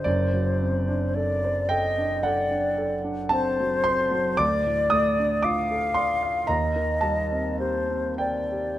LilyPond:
<<
  \new Staff \with { instrumentName = "Flute" } { \time 4/4 \key d \phrygian \tempo 4 = 56 c''4 d''8 ees''8 d''8. r16 c''4 | \key c \dorian d''4 f''4 ees''4 c''8 d''8 | }
  \new Staff \with { instrumentName = "Grand piano" } { \time 4/4 \key d \phrygian << { d''4. g''8 fis''4 a''8 c'''8 | \key c \dorian d'''8 ees'''8 d'''8 c'''8 bes''8 a''4 g''8 | } \\ { <fis,, fis,>16 fis16 c'16 d'16 a'16 c''16 a'16 d'16 a'16 d'16 a'16 d'16 c'16 fis16 c'16 fis16 | d,16 a,16 a16 d'16 f'16 a'16 d''16 f''16 ees,16 ees16 g16 c'16 g'16 c'16 c''16 g'16 | } >> }
>>